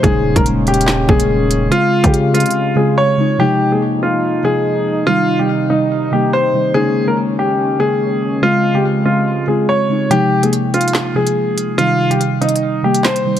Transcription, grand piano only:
X:1
M:4/4
L:1/16
Q:1/4=143
K:Fm
V:1 name="Grand piano"
A3 B z2 G4 A6 | F3 G z2 F4 A2 d4 | G3 A z2 F4 A6 | F3 G z2 E4 G2 c4 |
A3 B z2 G4 A6 | F3 G z2 F4 A2 d4 | G3 A z2 F4 A6 | F3 G z2 E4 G2 c4 |]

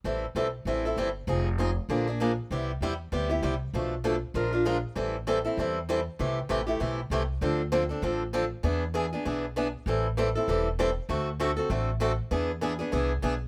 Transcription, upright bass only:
X:1
M:4/4
L:1/8
Q:"Swing" 1/4=196
K:Am
V:1 name="Upright bass" clef=bass
A,,,2 B,,,2 A,,,2 G,,,2 | F,,,4 _B,,,4 | C,,2 E,,2 D,,2 C,,2 | B,,,4 _B,,,4 |
A,,,4 E,,4 | C,,2 A,,,2 B,,,2 C,,2 | D,,4 A,,,4 | E,,4 B,,,4 |
A,,,4 E,,,4 | D,,4 A,,,4 | E,,4 C,,2 B,,,2 |]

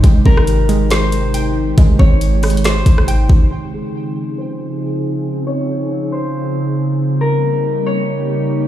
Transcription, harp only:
X:1
M:4/4
L:1/8
Q:1/4=138
K:Dblyd
V:1 name="Harp"
z B z2 c4 | z d z2 c2 z2 | z A z2 c4 | z d z2 c2 z2 |
z B z2 d4 |]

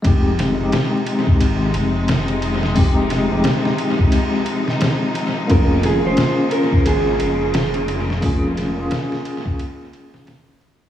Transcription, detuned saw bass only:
X:1
M:4/4
L:1/16
Q:"Swing 16ths" 1/4=88
K:Fm
V:1 name="Detuned saw bass" clef=bass
F,,,3 F,,, z4 A,,,2 F,,,6 | F,,,3 F,,, z12 | F,,,3 F,,, z4 A,,,2 F,,,6 | F,,,3 F,,, z12 |]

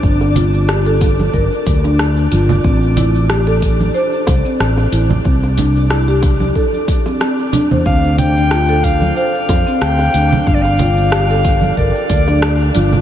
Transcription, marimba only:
X:1
M:4/4
L:1/16
Q:"Swing 16ths" 1/4=92
K:Gdor
V:1 name="Marimba"
D2 F z G A3 B3 D3 F z | C2 E z G A3 c3 C3 E z | C2 D z E G3 A z2 C C z D c | C2 D z F A3 c3 C3 D z |
D2 F z G A3 B3 D3 F z |]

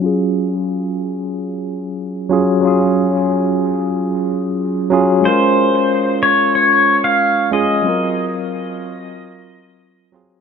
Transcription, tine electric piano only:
X:1
M:4/4
L:1/8
Q:1/4=92
K:Db
V:1 name="Tine electric piano"
[G,DFA]6- [G,DFA] [G,DFA] | [G,DFA]6- [G,DFA] [G,DFA] | [A,DFB]6- [A,DFB] [A,DFA] | [G,CFB]6- [G,CFB] [G,CFA] |]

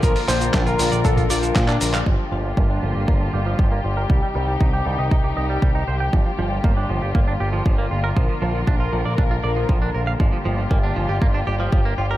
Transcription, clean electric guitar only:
X:1
M:4/4
L:1/16
Q:1/4=118
K:Gm
V:1 name="Clean electric guitar"
F, F, F, F, D F F, d D F d F, F, D B f | F, F, F, F, B, D F, G B, D G F, F, B, F B | G, G, G, G, E G G, e E G e G, G, E c g | F, F, F, F, B, D F, G B, D G F, F, B, F B |
F, F, F, F, D F F, d D F d F, F, D B f | F, F, F, F, B, D F, G B, D G F, F, B, F B |]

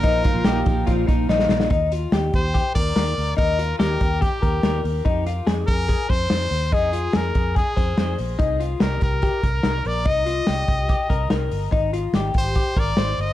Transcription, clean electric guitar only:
X:1
M:4/4
L:1/8
Q:1/4=144
K:Eb
V:1 name="Clean electric guitar"
E F G2 F E E2 | E F G2 G B B2 | E F G2 G B B2 | E F A2 A c c2 |
E F A2 A c c2 | E F G2 G B B2 | E F G2 G B B2 | E F G2 G B c2 |]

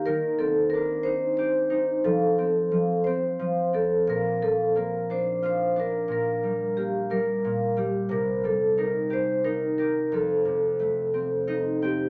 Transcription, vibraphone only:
X:1
M:6/8
L:1/8
Q:3/8=60
K:Fmix
V:1 name="Vibraphone"
B A B c c2 | A3 c2 A | B A B c c B | B2 G B2 G |
B A B c B B | A4- A G |]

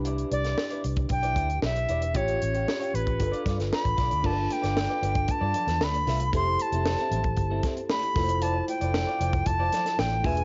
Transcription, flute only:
X:1
M:4/4
L:1/8
Q:1/4=115
K:Gmix
V:1 name="Flute"
z d2 z g2 e2 | ^c3 B2 z b2 | a g3 a2 b2 | c' a4 z b2 |
a g3 a2 g ^g |]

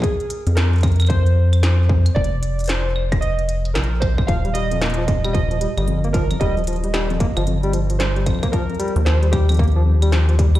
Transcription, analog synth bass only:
X:1
M:4/4
L:1/16
Q:"Swing 16ths" 1/4=113
K:Eb
V:1 name="Analog synth bass" clef=bass
z3 F,,12 z | F,,,12 B,,,3 z | E,,,8- E,,,2 z G,,,4 z | E,,,6 z G,,,6- G,,, z2 |
z3 E,,12 z |]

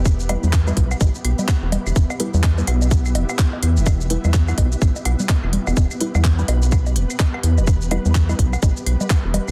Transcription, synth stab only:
X:1
M:4/4
L:1/16
Q:"Swing 16ths" 1/4=126
K:Em
V:1 name="Synth stab"
z2 [G,EB] z2 [G,EB] z8 z2 | z2 [G,EB] z2 [G,EB] z8 z2 | z2 [G,EB] z2 [G,EB] z8 z2 | z2 [G,EB] z2 [G,EB] z8 z2 |
z2 [G,EB] z2 [G,EB] z8 z2 |]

